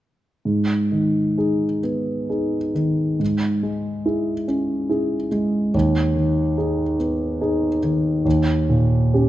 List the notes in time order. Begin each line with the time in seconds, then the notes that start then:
0.45 G#2
0.92 D#3
1.38 D#4 G#4
1.83 B3
2.29 D#4 G#4
2.75 D#3
3.20 G#2
3.63 G#3
4.06 E4 G#4
4.48 C#4
4.89 E4 G#4
5.31 G#3
5.74 D#2
6.16 D#3
6.58 D#4 G#4
6.99 B3
7.41 D#4 G#4
7.83 D#3
8.25 D#2
8.69 A#2
9.14 C#4 G4